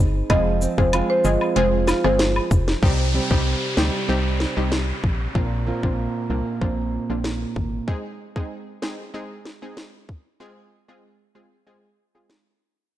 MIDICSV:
0, 0, Header, 1, 7, 480
1, 0, Start_track
1, 0, Tempo, 631579
1, 227, Time_signature, 4, 2, 24, 8
1, 9863, End_track
2, 0, Start_track
2, 0, Title_t, "Marimba"
2, 0, Program_c, 0, 12
2, 228, Note_on_c, 0, 75, 110
2, 339, Note_off_c, 0, 75, 0
2, 596, Note_on_c, 0, 72, 71
2, 694, Note_off_c, 0, 72, 0
2, 835, Note_on_c, 0, 72, 86
2, 933, Note_off_c, 0, 72, 0
2, 947, Note_on_c, 0, 75, 81
2, 1058, Note_off_c, 0, 75, 0
2, 1185, Note_on_c, 0, 72, 85
2, 1297, Note_off_c, 0, 72, 0
2, 1554, Note_on_c, 0, 72, 80
2, 1653, Note_off_c, 0, 72, 0
2, 9863, End_track
3, 0, Start_track
3, 0, Title_t, "Synth pluck"
3, 0, Program_c, 1, 84
3, 226, Note_on_c, 1, 56, 98
3, 227, Note_on_c, 1, 60, 88
3, 229, Note_on_c, 1, 65, 93
3, 231, Note_on_c, 1, 68, 105
3, 351, Note_off_c, 1, 56, 0
3, 351, Note_off_c, 1, 60, 0
3, 352, Note_off_c, 1, 65, 0
3, 353, Note_off_c, 1, 68, 0
3, 594, Note_on_c, 1, 56, 79
3, 595, Note_on_c, 1, 60, 74
3, 596, Note_on_c, 1, 65, 76
3, 598, Note_on_c, 1, 68, 85
3, 704, Note_off_c, 1, 56, 0
3, 705, Note_off_c, 1, 60, 0
3, 705, Note_off_c, 1, 65, 0
3, 706, Note_off_c, 1, 68, 0
3, 947, Note_on_c, 1, 56, 75
3, 948, Note_on_c, 1, 60, 70
3, 949, Note_on_c, 1, 65, 69
3, 951, Note_on_c, 1, 68, 84
3, 1071, Note_off_c, 1, 56, 0
3, 1072, Note_off_c, 1, 60, 0
3, 1072, Note_off_c, 1, 65, 0
3, 1073, Note_off_c, 1, 68, 0
3, 1186, Note_on_c, 1, 56, 94
3, 1187, Note_on_c, 1, 60, 84
3, 1189, Note_on_c, 1, 65, 86
3, 1191, Note_on_c, 1, 68, 107
3, 1523, Note_off_c, 1, 56, 0
3, 1524, Note_off_c, 1, 60, 0
3, 1525, Note_off_c, 1, 65, 0
3, 1526, Note_off_c, 1, 68, 0
3, 1554, Note_on_c, 1, 56, 77
3, 1554, Note_on_c, 1, 60, 71
3, 1556, Note_on_c, 1, 65, 73
3, 1557, Note_on_c, 1, 68, 89
3, 1664, Note_off_c, 1, 56, 0
3, 1664, Note_off_c, 1, 60, 0
3, 1665, Note_off_c, 1, 65, 0
3, 1666, Note_off_c, 1, 68, 0
3, 2147, Note_on_c, 1, 55, 95
3, 2149, Note_on_c, 1, 60, 85
3, 2150, Note_on_c, 1, 63, 85
3, 2152, Note_on_c, 1, 67, 103
3, 2271, Note_off_c, 1, 55, 0
3, 2272, Note_off_c, 1, 60, 0
3, 2273, Note_off_c, 1, 63, 0
3, 2274, Note_off_c, 1, 67, 0
3, 2513, Note_on_c, 1, 55, 80
3, 2514, Note_on_c, 1, 60, 72
3, 2516, Note_on_c, 1, 63, 72
3, 2518, Note_on_c, 1, 67, 86
3, 2624, Note_off_c, 1, 55, 0
3, 2625, Note_off_c, 1, 60, 0
3, 2625, Note_off_c, 1, 63, 0
3, 2626, Note_off_c, 1, 67, 0
3, 2866, Note_on_c, 1, 55, 72
3, 2867, Note_on_c, 1, 60, 68
3, 2869, Note_on_c, 1, 63, 68
3, 2870, Note_on_c, 1, 67, 84
3, 2991, Note_off_c, 1, 55, 0
3, 2991, Note_off_c, 1, 60, 0
3, 2992, Note_off_c, 1, 63, 0
3, 2993, Note_off_c, 1, 67, 0
3, 3106, Note_on_c, 1, 55, 91
3, 3108, Note_on_c, 1, 60, 82
3, 3109, Note_on_c, 1, 63, 81
3, 3110, Note_on_c, 1, 67, 100
3, 3443, Note_off_c, 1, 55, 0
3, 3444, Note_off_c, 1, 60, 0
3, 3444, Note_off_c, 1, 63, 0
3, 3445, Note_off_c, 1, 67, 0
3, 3473, Note_on_c, 1, 55, 77
3, 3474, Note_on_c, 1, 60, 72
3, 3476, Note_on_c, 1, 63, 69
3, 3477, Note_on_c, 1, 67, 83
3, 3584, Note_off_c, 1, 55, 0
3, 3585, Note_off_c, 1, 60, 0
3, 3585, Note_off_c, 1, 63, 0
3, 3586, Note_off_c, 1, 67, 0
3, 4065, Note_on_c, 1, 58, 94
3, 4067, Note_on_c, 1, 60, 85
3, 4069, Note_on_c, 1, 62, 83
3, 4070, Note_on_c, 1, 65, 106
3, 4190, Note_off_c, 1, 58, 0
3, 4191, Note_off_c, 1, 60, 0
3, 4192, Note_off_c, 1, 62, 0
3, 4193, Note_off_c, 1, 65, 0
3, 4434, Note_on_c, 1, 58, 81
3, 4435, Note_on_c, 1, 60, 74
3, 4437, Note_on_c, 1, 62, 72
3, 4438, Note_on_c, 1, 65, 90
3, 4544, Note_off_c, 1, 58, 0
3, 4545, Note_off_c, 1, 60, 0
3, 4546, Note_off_c, 1, 62, 0
3, 4546, Note_off_c, 1, 65, 0
3, 4786, Note_on_c, 1, 58, 75
3, 4788, Note_on_c, 1, 60, 65
3, 4789, Note_on_c, 1, 62, 69
3, 4791, Note_on_c, 1, 65, 79
3, 4911, Note_off_c, 1, 58, 0
3, 4912, Note_off_c, 1, 60, 0
3, 4912, Note_off_c, 1, 62, 0
3, 4913, Note_off_c, 1, 65, 0
3, 5026, Note_on_c, 1, 58, 90
3, 5028, Note_on_c, 1, 60, 80
3, 5028, Note_on_c, 1, 62, 80
3, 5031, Note_on_c, 1, 65, 96
3, 5363, Note_off_c, 1, 58, 0
3, 5364, Note_off_c, 1, 60, 0
3, 5364, Note_off_c, 1, 62, 0
3, 5365, Note_off_c, 1, 65, 0
3, 5393, Note_on_c, 1, 58, 72
3, 5395, Note_on_c, 1, 60, 68
3, 5396, Note_on_c, 1, 62, 71
3, 5398, Note_on_c, 1, 65, 82
3, 5504, Note_off_c, 1, 58, 0
3, 5505, Note_off_c, 1, 60, 0
3, 5505, Note_off_c, 1, 62, 0
3, 5506, Note_off_c, 1, 65, 0
3, 5985, Note_on_c, 1, 56, 95
3, 5986, Note_on_c, 1, 60, 85
3, 5988, Note_on_c, 1, 63, 84
3, 5989, Note_on_c, 1, 68, 105
3, 6110, Note_off_c, 1, 56, 0
3, 6111, Note_off_c, 1, 60, 0
3, 6111, Note_off_c, 1, 63, 0
3, 6112, Note_off_c, 1, 68, 0
3, 6352, Note_on_c, 1, 56, 76
3, 6354, Note_on_c, 1, 60, 73
3, 6355, Note_on_c, 1, 63, 71
3, 6357, Note_on_c, 1, 68, 84
3, 6463, Note_off_c, 1, 56, 0
3, 6464, Note_off_c, 1, 60, 0
3, 6465, Note_off_c, 1, 63, 0
3, 6466, Note_off_c, 1, 68, 0
3, 6704, Note_on_c, 1, 56, 71
3, 6706, Note_on_c, 1, 60, 70
3, 6708, Note_on_c, 1, 63, 69
3, 6709, Note_on_c, 1, 68, 83
3, 6830, Note_off_c, 1, 56, 0
3, 6831, Note_off_c, 1, 60, 0
3, 6832, Note_off_c, 1, 63, 0
3, 6832, Note_off_c, 1, 68, 0
3, 6945, Note_on_c, 1, 56, 90
3, 6947, Note_on_c, 1, 60, 83
3, 6948, Note_on_c, 1, 63, 80
3, 6950, Note_on_c, 1, 68, 94
3, 7283, Note_off_c, 1, 56, 0
3, 7283, Note_off_c, 1, 60, 0
3, 7284, Note_off_c, 1, 63, 0
3, 7285, Note_off_c, 1, 68, 0
3, 7312, Note_on_c, 1, 56, 73
3, 7313, Note_on_c, 1, 60, 65
3, 7315, Note_on_c, 1, 63, 67
3, 7316, Note_on_c, 1, 68, 80
3, 7423, Note_off_c, 1, 56, 0
3, 7424, Note_off_c, 1, 60, 0
3, 7425, Note_off_c, 1, 63, 0
3, 7425, Note_off_c, 1, 68, 0
3, 7904, Note_on_c, 1, 56, 92
3, 7906, Note_on_c, 1, 60, 87
3, 7907, Note_on_c, 1, 65, 87
3, 7908, Note_on_c, 1, 68, 104
3, 8030, Note_off_c, 1, 56, 0
3, 8031, Note_off_c, 1, 60, 0
3, 8031, Note_off_c, 1, 65, 0
3, 8032, Note_off_c, 1, 68, 0
3, 8272, Note_on_c, 1, 56, 76
3, 8273, Note_on_c, 1, 60, 69
3, 8275, Note_on_c, 1, 65, 71
3, 8277, Note_on_c, 1, 68, 84
3, 8383, Note_off_c, 1, 56, 0
3, 8384, Note_off_c, 1, 60, 0
3, 8385, Note_off_c, 1, 65, 0
3, 8386, Note_off_c, 1, 68, 0
3, 8625, Note_on_c, 1, 56, 75
3, 8627, Note_on_c, 1, 60, 66
3, 8628, Note_on_c, 1, 65, 68
3, 8629, Note_on_c, 1, 68, 84
3, 8750, Note_off_c, 1, 56, 0
3, 8751, Note_off_c, 1, 60, 0
3, 8752, Note_off_c, 1, 65, 0
3, 8752, Note_off_c, 1, 68, 0
3, 8866, Note_on_c, 1, 56, 85
3, 8868, Note_on_c, 1, 60, 79
3, 8869, Note_on_c, 1, 65, 77
3, 8870, Note_on_c, 1, 68, 95
3, 9203, Note_off_c, 1, 56, 0
3, 9204, Note_off_c, 1, 60, 0
3, 9205, Note_off_c, 1, 65, 0
3, 9205, Note_off_c, 1, 68, 0
3, 9232, Note_on_c, 1, 56, 73
3, 9234, Note_on_c, 1, 60, 64
3, 9235, Note_on_c, 1, 65, 70
3, 9237, Note_on_c, 1, 68, 84
3, 9343, Note_off_c, 1, 56, 0
3, 9344, Note_off_c, 1, 60, 0
3, 9345, Note_off_c, 1, 65, 0
3, 9346, Note_off_c, 1, 68, 0
3, 9863, End_track
4, 0, Start_track
4, 0, Title_t, "Nylon-string guitar"
4, 0, Program_c, 2, 24
4, 0, Note_on_c, 2, 56, 67
4, 0, Note_on_c, 2, 60, 67
4, 0, Note_on_c, 2, 63, 72
4, 228, Note_on_c, 2, 53, 86
4, 278, Note_off_c, 2, 63, 0
4, 465, Note_off_c, 2, 60, 0
4, 468, Note_on_c, 2, 60, 64
4, 705, Note_off_c, 2, 56, 0
4, 708, Note_on_c, 2, 56, 66
4, 710, Note_off_c, 2, 60, 0
4, 713, Note_on_c, 2, 60, 68
4, 718, Note_on_c, 2, 65, 73
4, 1418, Note_off_c, 2, 65, 0
4, 1427, Note_on_c, 2, 65, 70
4, 2147, Note_off_c, 2, 53, 0
4, 2148, Note_on_c, 2, 48, 78
4, 2198, Note_off_c, 2, 65, 0
4, 2199, Note_off_c, 2, 56, 0
4, 2388, Note_on_c, 2, 55, 57
4, 2390, Note_off_c, 2, 60, 0
4, 2393, Note_on_c, 2, 60, 60
4, 2397, Note_on_c, 2, 67, 64
4, 2858, Note_off_c, 2, 55, 0
4, 2868, Note_on_c, 2, 55, 56
4, 3105, Note_off_c, 2, 60, 0
4, 3108, Note_on_c, 2, 60, 62
4, 4064, Note_off_c, 2, 48, 0
4, 4067, Note_on_c, 2, 46, 80
4, 4118, Note_off_c, 2, 55, 0
4, 4123, Note_off_c, 2, 67, 0
4, 4307, Note_on_c, 2, 58, 60
4, 4309, Note_off_c, 2, 60, 0
4, 4312, Note_on_c, 2, 60, 61
4, 4317, Note_on_c, 2, 65, 62
4, 4778, Note_off_c, 2, 58, 0
4, 4788, Note_on_c, 2, 58, 57
4, 5025, Note_off_c, 2, 60, 0
4, 5028, Note_on_c, 2, 60, 64
4, 5987, Note_off_c, 2, 46, 0
4, 6038, Note_off_c, 2, 58, 0
4, 6043, Note_off_c, 2, 65, 0
4, 6418, Note_off_c, 2, 60, 0
4, 9863, End_track
5, 0, Start_track
5, 0, Title_t, "FM bass"
5, 0, Program_c, 3, 39
5, 0, Note_on_c, 3, 31, 95
5, 172, Note_off_c, 3, 31, 0
5, 228, Note_on_c, 3, 29, 110
5, 510, Note_off_c, 3, 29, 0
5, 593, Note_on_c, 3, 29, 90
5, 778, Note_off_c, 3, 29, 0
5, 948, Note_on_c, 3, 31, 98
5, 1045, Note_off_c, 3, 31, 0
5, 1189, Note_on_c, 3, 29, 101
5, 1470, Note_off_c, 3, 29, 0
5, 1555, Note_on_c, 3, 31, 89
5, 1826, Note_off_c, 3, 31, 0
5, 1908, Note_on_c, 3, 29, 97
5, 2092, Note_off_c, 3, 29, 0
5, 2148, Note_on_c, 3, 36, 110
5, 2430, Note_off_c, 3, 36, 0
5, 2514, Note_on_c, 3, 36, 87
5, 2698, Note_off_c, 3, 36, 0
5, 2869, Note_on_c, 3, 38, 101
5, 2966, Note_off_c, 3, 38, 0
5, 3109, Note_on_c, 3, 36, 100
5, 3390, Note_off_c, 3, 36, 0
5, 3475, Note_on_c, 3, 36, 88
5, 3746, Note_off_c, 3, 36, 0
5, 3828, Note_on_c, 3, 34, 87
5, 4012, Note_off_c, 3, 34, 0
5, 4067, Note_on_c, 3, 34, 105
5, 4349, Note_off_c, 3, 34, 0
5, 4434, Note_on_c, 3, 34, 78
5, 4618, Note_off_c, 3, 34, 0
5, 4787, Note_on_c, 3, 36, 100
5, 4885, Note_off_c, 3, 36, 0
5, 5027, Note_on_c, 3, 34, 93
5, 5309, Note_off_c, 3, 34, 0
5, 5395, Note_on_c, 3, 34, 78
5, 5666, Note_off_c, 3, 34, 0
5, 5748, Note_on_c, 3, 32, 93
5, 5932, Note_off_c, 3, 32, 0
5, 9863, End_track
6, 0, Start_track
6, 0, Title_t, "Downlifter"
6, 0, Program_c, 4, 103
6, 2148, Note_on_c, 4, 60, 84
6, 5987, Note_off_c, 4, 60, 0
6, 9863, End_track
7, 0, Start_track
7, 0, Title_t, "Drums"
7, 227, Note_on_c, 9, 36, 127
7, 227, Note_on_c, 9, 42, 78
7, 229, Note_on_c, 9, 76, 71
7, 303, Note_off_c, 9, 36, 0
7, 303, Note_off_c, 9, 42, 0
7, 305, Note_off_c, 9, 76, 0
7, 468, Note_on_c, 9, 69, 80
7, 544, Note_off_c, 9, 69, 0
7, 594, Note_on_c, 9, 36, 89
7, 670, Note_off_c, 9, 36, 0
7, 707, Note_on_c, 9, 76, 85
7, 708, Note_on_c, 9, 42, 94
7, 783, Note_off_c, 9, 76, 0
7, 784, Note_off_c, 9, 42, 0
7, 946, Note_on_c, 9, 69, 78
7, 1022, Note_off_c, 9, 69, 0
7, 1073, Note_on_c, 9, 76, 64
7, 1149, Note_off_c, 9, 76, 0
7, 1187, Note_on_c, 9, 42, 76
7, 1263, Note_off_c, 9, 42, 0
7, 1425, Note_on_c, 9, 38, 72
7, 1428, Note_on_c, 9, 69, 74
7, 1428, Note_on_c, 9, 76, 74
7, 1501, Note_off_c, 9, 38, 0
7, 1504, Note_off_c, 9, 69, 0
7, 1504, Note_off_c, 9, 76, 0
7, 1553, Note_on_c, 9, 37, 95
7, 1629, Note_off_c, 9, 37, 0
7, 1666, Note_on_c, 9, 38, 119
7, 1667, Note_on_c, 9, 42, 86
7, 1742, Note_off_c, 9, 38, 0
7, 1743, Note_off_c, 9, 42, 0
7, 1795, Note_on_c, 9, 76, 73
7, 1871, Note_off_c, 9, 76, 0
7, 1908, Note_on_c, 9, 36, 107
7, 1908, Note_on_c, 9, 69, 68
7, 1984, Note_off_c, 9, 36, 0
7, 1984, Note_off_c, 9, 69, 0
7, 2036, Note_on_c, 9, 38, 66
7, 2112, Note_off_c, 9, 38, 0
7, 2148, Note_on_c, 9, 36, 117
7, 2224, Note_off_c, 9, 36, 0
7, 2514, Note_on_c, 9, 36, 89
7, 2590, Note_off_c, 9, 36, 0
7, 2867, Note_on_c, 9, 38, 111
7, 2943, Note_off_c, 9, 38, 0
7, 3345, Note_on_c, 9, 38, 70
7, 3421, Note_off_c, 9, 38, 0
7, 3585, Note_on_c, 9, 38, 119
7, 3661, Note_off_c, 9, 38, 0
7, 3828, Note_on_c, 9, 36, 93
7, 3904, Note_off_c, 9, 36, 0
7, 4067, Note_on_c, 9, 36, 120
7, 4143, Note_off_c, 9, 36, 0
7, 4433, Note_on_c, 9, 36, 85
7, 4509, Note_off_c, 9, 36, 0
7, 5028, Note_on_c, 9, 36, 88
7, 5104, Note_off_c, 9, 36, 0
7, 5504, Note_on_c, 9, 38, 116
7, 5580, Note_off_c, 9, 38, 0
7, 5747, Note_on_c, 9, 36, 96
7, 5823, Note_off_c, 9, 36, 0
7, 5987, Note_on_c, 9, 36, 116
7, 6063, Note_off_c, 9, 36, 0
7, 6353, Note_on_c, 9, 36, 88
7, 6429, Note_off_c, 9, 36, 0
7, 6706, Note_on_c, 9, 38, 106
7, 6782, Note_off_c, 9, 38, 0
7, 7185, Note_on_c, 9, 38, 66
7, 7261, Note_off_c, 9, 38, 0
7, 7425, Note_on_c, 9, 38, 112
7, 7501, Note_off_c, 9, 38, 0
7, 7667, Note_on_c, 9, 36, 98
7, 7743, Note_off_c, 9, 36, 0
7, 9345, Note_on_c, 9, 38, 108
7, 9421, Note_off_c, 9, 38, 0
7, 9863, End_track
0, 0, End_of_file